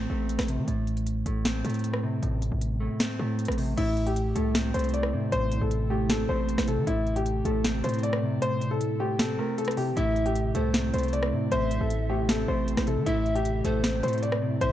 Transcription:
Already playing: C4
0.10 A1 A3
0.29 closed hi-hat
0.39 A1, cross-stick, snare
0.48 C3, closed hi-hat
0.58 E3
0.67 A1 A2, closed hi-hat
0.87 closed hi-hat
0.97 closed hi-hat
1.07 closed hi-hat
1.26 A1 A3, closed hi-hat
1.45 C4, snare, closed hi-hat
1.65 A2 A3, closed hi-hat
1.69 closed hi-hat
1.74 closed hi-hat
1.79 closed hi-hat
1.84 closed hi-hat
1.94 cross-stick
2.03 C3
2.22 A1 A2, closed hi-hat
2.42 closed hi-hat
2.52 A1
2.61 closed hi-hat
2.80 A3
3.00 C4, snare, closed hi-hat
3.19 A2 A3
3.39 closed hi-hat
3.45 A1, cross-stick, closed hi-hat
3.52 closed hi-hat
3.57 C3, open hi-hat
3.77 A1 A2 C3 A3 E4, closed hi-hat, crash
3.97 closed hi-hat
4.07 G4, closed hi-hat
4.16 closed hi-hat
4.35 C2 A3 A4, closed hi-hat
4.54 C4, snare, closed hi-hat
4.74 C2 A3 C5, closed hi-hat
4.79 closed hi-hat
4.84 closed hi-hat
4.89 closed hi-hat
4.94 D5, closed hi-hat
5.03 cross-stick
5.13 A2 C3
5.32 A1 A2 C5, closed hi-hat
5.52 A#1, closed hi-hat
5.61 A1 A4
5.71 closed hi-hat
5.90 A3 G4
6.10 C4 A4, snare, closed hi-hat
6.29 A1 A3 C5
6.49 closed hi-hat
6.58 A1, cross-stick, snare
6.68 C3 A4, closed hi-hat
6.77 E3
6.87 A1 A2 E4, closed hi-hat
7.07 closed hi-hat
7.16 G4, closed hi-hat
7.26 closed hi-hat
7.45 A1 A3 A4, closed hi-hat
7.64 C4, snare, closed hi-hat
7.84 A2 A3 C5, closed hi-hat
7.89 closed hi-hat
7.94 closed hi-hat
7.98 closed hi-hat
8.03 D5, closed hi-hat
8.13 cross-stick
8.23 C3
8.42 A2 C5, closed hi-hat
8.61 closed hi-hat
8.71 A4
8.81 closed hi-hat
9.00 A3 G4
9.19 C4 A4, snare, closed hi-hat
9.39 A3 A#4
9.58 A4, closed hi-hat
9.65 cross-stick, closed hi-hat
9.71 closed hi-hat
9.77 C3 G4, open hi-hat
9.96 A1 A2 E4 E5, closed hi-hat
10.16 closed hi-hat
10.26 G4, closed hi-hat
10.35 closed hi-hat
10.55 C2 A3 A4 C5, closed hi-hat
10.74 C4, snare, closed hi-hat
10.94 C2 A3 C5, closed hi-hat
10.98 closed hi-hat
11.03 closed hi-hat
11.08 closed hi-hat
11.13 D5, closed hi-hat
11.23 cross-stick
11.32 A2 C3
11.52 A1 A2 C5 E5, closed hi-hat
11.71 A#1, closed hi-hat
11.81 A1 A4
11.90 closed hi-hat
12.10 A3 G4
12.29 C4 A4, snare, closed hi-hat
12.48 A1 A3 C5
12.68 closed hi-hat
12.77 A1, cross-stick, snare
12.87 C3 A4, closed hi-hat
12.97 E3
13.06 A1 A2 C3 A3 E4 E5, closed hi-hat
13.26 closed hi-hat
13.35 G4, closed hi-hat
13.45 closed hi-hat
13.64 A1 A3 A4 C5, closed hi-hat
13.84 C4, snare, closed hi-hat
14.03 A2 A3 C5, closed hi-hat
14.08 closed hi-hat
14.13 closed hi-hat
14.18 closed hi-hat
14.23 D5, closed hi-hat
14.32 cross-stick
14.42 C3
14.61 A1 A2 C5 E5, closed hi-hat

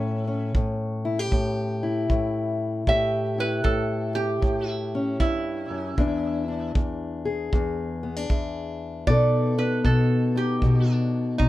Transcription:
Already playing: A2 C#4 E4
0.27 C#4
0.55 A2, kick
1.05 E4
1.19 G4
1.31 A2, kick
1.83 E4
2.10 A2, kick
2.87 A2 G4 E5, kick
3.38 E4 B4
3.64 A2 A4, kick
4.15 G4
4.42 A2, kick
4.68 E4
4.95 C#4
5.20 G2 E4, kick
5.70 F#2
5.98 E2 D4, kick
6.48 D4
6.75 E2, kick
7.25 G#4
7.53 E2, kick
8.03 B3
8.16 D4
8.30 E2, kick
9.07 B2 B3 D#4 A4 D5, kick
9.58 D#4 B4
9.84 B2 A4, kick
10.36 D#4 G4
10.62 B2, kick
10.90 D4
11.38 B2 D#4, kick

